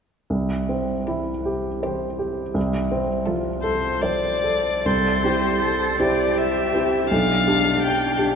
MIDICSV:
0, 0, Header, 1, 4, 480
1, 0, Start_track
1, 0, Key_signature, 0, "major"
1, 0, Tempo, 770218
1, 188, Time_signature, 3, 2, 24, 8
1, 1143, Tempo, 717703
1, 2103, Tempo, 755668
1, 2583, Tempo, 834492
1, 3063, Tempo, 755668
1, 4023, Tempo, 723764
1, 5338, End_track
2, 0, Start_track
2, 0, Title_t, "Violin"
2, 0, Program_c, 0, 40
2, 666, Note_on_c, 0, 67, 34
2, 1021, Note_off_c, 0, 67, 0
2, 1141, Note_on_c, 0, 67, 36
2, 1504, Note_off_c, 0, 67, 0
2, 2093, Note_on_c, 0, 69, 45
2, 2314, Note_off_c, 0, 69, 0
2, 2329, Note_on_c, 0, 72, 61
2, 2578, Note_on_c, 0, 74, 67
2, 2587, Note_off_c, 0, 72, 0
2, 3063, Note_on_c, 0, 72, 52
2, 3072, Note_off_c, 0, 74, 0
2, 3782, Note_off_c, 0, 72, 0
2, 3785, Note_on_c, 0, 74, 49
2, 4026, Note_on_c, 0, 76, 52
2, 4036, Note_off_c, 0, 74, 0
2, 4503, Note_off_c, 0, 76, 0
2, 4507, Note_on_c, 0, 77, 59
2, 4974, Note_off_c, 0, 77, 0
2, 4985, Note_on_c, 0, 79, 58
2, 5219, Note_off_c, 0, 79, 0
2, 5338, End_track
3, 0, Start_track
3, 0, Title_t, "Grand piano"
3, 0, Program_c, 1, 0
3, 187, Note_on_c, 1, 36, 32
3, 295, Control_c, 1, 64, 127
3, 431, Note_on_c, 1, 60, 27
3, 671, Note_on_c, 1, 64, 28
3, 816, Note_off_c, 1, 60, 0
3, 906, Note_on_c, 1, 67, 31
3, 1048, Note_off_c, 1, 64, 0
3, 1140, Note_on_c, 1, 72, 31
3, 1287, Note_off_c, 1, 67, 0
3, 1381, Note_on_c, 1, 67, 29
3, 1529, Note_off_c, 1, 72, 0
3, 1599, Note_off_c, 1, 36, 0
3, 1618, Note_on_c, 1, 36, 39
3, 1623, Note_off_c, 1, 67, 0
3, 1638, Control_c, 1, 64, 0
3, 1730, Control_c, 1, 64, 127
3, 1866, Note_on_c, 1, 60, 34
3, 2100, Note_on_c, 1, 65, 36
3, 2243, Note_off_c, 1, 60, 0
3, 2333, Note_on_c, 1, 69, 40
3, 2481, Note_off_c, 1, 65, 0
3, 2584, Note_on_c, 1, 72, 39
3, 2724, Note_off_c, 1, 69, 0
3, 2820, Note_on_c, 1, 69, 33
3, 2972, Note_off_c, 1, 72, 0
3, 3036, Note_off_c, 1, 36, 0
3, 3060, Note_on_c, 1, 36, 33
3, 3061, Note_off_c, 1, 69, 0
3, 3075, Control_c, 1, 64, 0
3, 3176, Control_c, 1, 64, 127
3, 3297, Note_off_c, 1, 36, 0
3, 3306, Note_on_c, 1, 60, 25
3, 3309, Note_on_c, 1, 64, 27
3, 3311, Note_on_c, 1, 67, 28
3, 3757, Note_off_c, 1, 60, 0
3, 3759, Note_off_c, 1, 64, 0
3, 3760, Note_off_c, 1, 67, 0
3, 3785, Note_on_c, 1, 60, 29
3, 3786, Note_on_c, 1, 64, 29
3, 3789, Note_on_c, 1, 67, 31
3, 4244, Note_off_c, 1, 60, 0
3, 4245, Note_off_c, 1, 64, 0
3, 4246, Note_off_c, 1, 67, 0
3, 4272, Note_on_c, 1, 60, 28
3, 4276, Note_on_c, 1, 64, 29
3, 4279, Note_on_c, 1, 67, 31
3, 4487, Note_off_c, 1, 60, 0
3, 4489, Note_off_c, 1, 64, 0
3, 4490, Note_off_c, 1, 67, 0
3, 4514, Note_on_c, 1, 35, 40
3, 4520, Control_c, 1, 64, 0
3, 4633, Control_c, 1, 64, 127
3, 4742, Note_off_c, 1, 35, 0
3, 4750, Note_on_c, 1, 62, 31
3, 4753, Note_on_c, 1, 67, 33
3, 5198, Note_off_c, 1, 62, 0
3, 5200, Note_off_c, 1, 67, 0
3, 5224, Note_on_c, 1, 62, 37
3, 5228, Note_on_c, 1, 67, 38
3, 5338, Note_off_c, 1, 62, 0
3, 5338, Note_off_c, 1, 67, 0
3, 5338, End_track
4, 0, Start_track
4, 0, Title_t, "Cello"
4, 0, Program_c, 2, 42
4, 677, Note_on_c, 2, 52, 36
4, 1026, Note_off_c, 2, 52, 0
4, 1141, Note_on_c, 2, 52, 37
4, 1503, Note_off_c, 2, 52, 0
4, 2103, Note_on_c, 2, 53, 47
4, 2456, Note_off_c, 2, 53, 0
4, 2581, Note_on_c, 2, 53, 45
4, 2948, Note_off_c, 2, 53, 0
4, 3064, Note_on_c, 2, 69, 44
4, 3299, Note_on_c, 2, 67, 35
4, 3309, Note_off_c, 2, 69, 0
4, 3539, Note_on_c, 2, 69, 42
4, 3549, Note_off_c, 2, 67, 0
4, 3783, Note_on_c, 2, 67, 47
4, 3793, Note_off_c, 2, 69, 0
4, 4507, Note_off_c, 2, 67, 0
4, 4511, Note_on_c, 2, 62, 46
4, 5338, Note_off_c, 2, 62, 0
4, 5338, End_track
0, 0, End_of_file